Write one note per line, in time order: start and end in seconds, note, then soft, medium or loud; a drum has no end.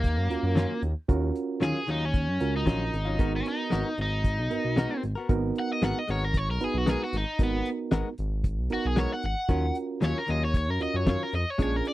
0.00 0.18 D#2 medium
0.00 0.81 A#3 loud
0.00 kick medium
0.00 closed hi-hat medium
0.17 0.28 F#2 medium
0.30 0.37 D#2 soft
0.30 0.85 C#4 medium
0.30 0.85 F4 medium
0.30 0.85 F#4 medium
0.30 0.85 A#4 medium
0.30 closed hi-hat medium
0.43 0.66 F#2 medium
0.55 0.72 D#3 medium
0.55 0.73 F#3 medium
0.55 0.73 C#4 loud
0.55 0.73 F4 loud
0.55 snare loud
0.55 closed hi-hat medium
0.82 0.94 D#2 medium
0.82 closed hi-hat medium
1.09 1.31 D#2 loud
1.09 1.82 C#4 medium
1.09 1.82 F4 medium
1.09 1.82 F#4 medium
1.09 1.82 A#4 medium
1.09 kick loud
1.09 closed hi-hat medium
1.36 closed hi-hat medium
1.61 1.73 D#2 medium
1.61 1.77 D#3 medium
1.61 1.78 F#3 medium
1.61 1.78 C#4 medium
1.61 1.79 F4 medium
1.61 1.88 G#4 medium
1.61 snare loud
1.61 closed hi-hat medium
1.87 2.29 D#2 medium
1.87 2.04 D#3 soft
1.87 2.04 F#3 soft
1.87 2.05 C#4 medium
1.87 2.05 D#4 medium
1.87 2.05 F4 medium
1.87 closed hi-hat medium
2.05 2.54 C#4 medium
2.14 kick medium
2.14 closed hi-hat medium
2.28 2.39 F#2 medium
2.40 2.64 C#2 medium
2.40 2.95 C#4 medium
2.40 2.95 F4 medium
2.40 2.95 F#4 medium
2.40 2.95 A#4 medium
2.40 closed hi-hat medium
2.56 3.32 D#4 medium
2.66 2.90 A#1 medium
2.66 2.83 D#3 medium
2.66 2.83 F#3 medium
2.66 2.83 C#4 medium
2.66 2.84 F4 medium
2.66 kick medium
2.66 snare loud
2.66 closed hi-hat medium
2.93 3.17 G#1 medium
2.93 closed hi-hat medium
3.05 3.18 F#3 soft
3.05 3.19 C#4 soft
3.05 3.19 F4 soft
3.19 3.42 G#1 loud
3.19 3.35 G#3 medium
3.19 3.92 B3 medium
3.19 3.36 B3 medium
3.19 3.92 D#4 medium
3.19 3.92 F#4 medium
3.19 3.36 F#4 medium
3.19 3.93 A#4 medium
3.19 3.36 A#4 medium
3.19 kick loud
3.19 closed hi-hat medium
3.36 3.47 C#4 medium
3.46 3.98 D#4 medium
3.46 closed hi-hat medium
3.70 3.84 G#1 medium
3.70 3.87 G#3 medium
3.70 3.88 B3 medium
3.70 3.88 F#4 medium
3.70 3.89 A#4 medium
3.70 snare loud
3.70 closed hi-hat medium
3.98 4.39 G#1 medium
3.98 5.02 D#4 loud
3.98 closed hi-hat soft
4.24 kick medium
4.24 closed hi-hat medium
4.38 4.49 B1 medium
4.50 4.58 G#1 soft
4.50 5.05 B3 medium
4.50 5.05 D#4 medium
4.50 5.05 F#4 medium
4.50 5.05 A#4 medium
4.50 closed hi-hat medium
4.65 4.87 B1 medium
4.76 4.93 G#3 medium
4.76 4.93 B3 medium
4.76 4.94 F#4 loud
4.76 4.94 A#4 loud
4.76 snare loud
4.76 closed hi-hat medium
5.03 5.15 G#1 medium
5.03 closed hi-hat medium
5.15 5.33 B3 soft
5.15 5.33 F#4 soft
5.15 5.32 A#4 soft
5.29 5.52 G#1 medium
5.29 6.02 B3 loud
5.29 6.02 D#4 medium
5.29 6.02 F#4 medium
5.29 6.02 A#4 loud
5.29 kick loud
5.29 closed hi-hat medium
5.56 5.71 F#5 loud
5.56 closed hi-hat medium
5.73 5.83 D#5 medium
5.82 5.93 G#1 loud
5.82 5.98 G#3 medium
5.82 5.99 B3 medium
5.82 5.99 F#4 medium
5.82 5.99 A#4 medium
5.82 5.99 F#5 medium
5.82 snare loud
5.82 closed hi-hat medium
5.99 6.09 D#5 medium
6.08 6.50 G#1 loud
6.08 6.24 G#3 medium
6.08 6.25 B3 soft
6.08 6.25 F#4 medium
6.08 6.26 A#4 medium
6.08 6.24 C#5 medium
6.08 closed hi-hat medium
6.24 6.37 A#4 medium
6.34 6.49 C#5 medium
6.34 kick medium
6.34 closed hi-hat medium
6.48 6.59 B1 loud
6.48 6.64 A#4 medium
6.60 6.67 G#1 soft
6.60 7.15 B3 medium
6.60 7.15 D#4 medium
6.60 7.15 F#4 medium
6.60 6.78 G#4 medium
6.60 7.15 B4 medium
6.60 closed hi-hat medium
6.74 6.96 B1 medium
6.78 6.88 F#4 medium
6.86 7.03 G#3 medium
6.86 7.03 B3 medium
6.86 7.04 F#4 medium
6.86 7.02 G#4 medium
6.86 7.04 A#4 medium
6.86 snare loud
6.86 closed hi-hat medium
7.04 7.15 F#4 medium
7.13 7.25 G#1 medium
7.13 closed hi-hat medium
7.17 7.41 D#4 medium
7.39 7.62 G#1 loud
7.39 8.12 B3 medium
7.39 8.12 D#4 medium
7.39 8.12 F#4 medium
7.39 8.12 A#4 medium
7.39 kick loud
7.39 closed hi-hat medium
7.44 7.67 B3 loud
7.66 closed hi-hat medium
7.91 8.03 G#1 medium
7.91 8.08 G#3 medium
7.91 8.08 B3 medium
7.91 8.09 F#4 medium
7.91 8.09 A#4 loud
7.91 snare loud
7.91 closed hi-hat medium
8.18 8.60 G#1 medium
8.18 closed hi-hat medium
8.44 kick medium
8.44 closed hi-hat medium
8.58 8.69 B1 medium
8.70 8.78 G#1 soft
8.70 9.25 B3 medium
8.70 9.25 D#4 medium
8.70 9.25 F#4 medium
8.70 8.85 F#4 loud
8.70 9.25 A#4 medium
8.70 closed hi-hat medium
8.85 9.07 B1 medium
8.85 8.98 G#4 medium
8.96 9.13 G#3 medium
8.96 9.13 B3 medium
8.96 9.13 F#4 medium
8.96 9.14 A#4 medium
8.96 9.12 C#5 loud
8.96 snare loud
8.96 closed hi-hat medium
9.14 9.24 F#5 loud
9.23 9.35 G#1 medium
9.23 9.75 F#5 medium
9.23 closed hi-hat medium
9.48 9.71 D#2 medium
9.48 9.65 D#3 medium
9.48 9.66 F#3 medium
9.48 10.22 C#4 medium
9.48 9.66 C#4 medium
9.48 10.22 F4 medium
9.48 9.66 F4 medium
9.48 10.22 F#4 medium
9.48 10.22 A#4 medium
9.48 kick loud
9.48 closed hi-hat medium
9.75 closed hi-hat medium
10.01 10.14 D#2 medium
10.01 10.17 D#3 medium
10.01 10.18 F#3 medium
10.01 10.18 C#4 medium
10.01 10.19 F4 medium
10.01 snare loud
10.01 closed hi-hat medium
10.05 10.17 C#5 loud
10.18 10.29 A#4 medium
10.27 10.69 D#2 medium
10.27 10.43 D#3 soft
10.27 10.44 F#3 medium
10.27 10.45 C#4 medium
10.27 10.45 F4 medium
10.27 10.42 D#5 medium
10.27 closed hi-hat medium
10.45 10.55 C#5 medium
10.54 10.70 C#5 medium
10.54 kick medium
10.54 closed hi-hat medium
10.68 10.79 F#2 loud
10.68 10.81 A#4 medium
10.80 10.87 D#2 soft
10.80 11.35 C#4 medium
10.80 11.35 F4 medium
10.80 11.35 F#4 medium
10.80 11.35 A#4 medium
10.80 10.96 D#5 medium
10.80 closed hi-hat medium
10.94 11.16 F#2 medium
10.94 11.07 C#5 medium
11.06 11.23 D#3 medium
11.06 11.23 F#3 medium
11.06 11.24 C#4 medium
11.06 11.24 F4 loud
11.06 11.23 C#5 medium
11.06 kick medium
11.06 snare loud
11.06 closed hi-hat medium
11.23 11.34 A#4 medium
11.33 11.45 F2 medium
11.33 11.50 D#5 medium
11.33 closed hi-hat medium
11.50 11.61 C#5 medium
11.58 11.81 A#1 medium
11.58 11.75 A#2 medium
11.58 11.75 G#3 medium
11.58 11.93 C#4 medium
11.58 11.76 C#4 medium
11.58 11.93 D4 medium
11.58 11.76 D4 medium
11.58 11.93 F4 medium
11.58 11.93 G#4 medium
11.58 kick loud
11.58 closed hi-hat medium
11.63 11.76 C#5 medium
11.76 11.87 A#4 medium
11.85 11.93 D5 medium
11.85 closed hi-hat medium